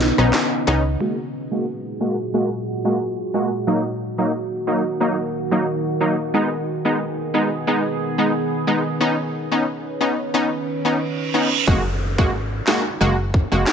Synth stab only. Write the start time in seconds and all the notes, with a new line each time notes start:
0.18 B3 C#4 D#4
0.67 B3 C#4 D#4
1.00 G#3 A#3 F#4
1.52 G#3 A#3 F#4
2.01 G#3 A#3 F#4
2.34 G#3 A#3 F#4
2.85 G#3 A#3 F#4
3.34 G#3 A#3 F#4
3.67 F#3 A#3 D#4
4.18 F#3 A#3 D#4
4.67 F#3 A#3 D#4
5.00 F#3 A#3 D#4
5.51 F#3 A#3 D#4
6.01 F#3 A#3 D#4
6.34 G#3 B3 D#4
6.85 G#3 B3 D#4
7.34 G#3 B3 D#4
7.67 G#3 B3 D#4
8.18 G#3 B3 D#4
8.67 G#3 B3 D#4
9.00 B3 C#4 D#4
9.52 B3 C#4 D#4
10.01 B3 C#4 D#4
10.34 B3 C#4 D#4
10.85 B3 C#4 D#4
11.34 B3 C#4 D#4
11.67 G#3 A#3 F#4
12.18 G#3 A#3 F#4
12.67 G#3 A#3 F#4
13.01 G#3 A#3 F#4
13.52 G#3 A#3 F#4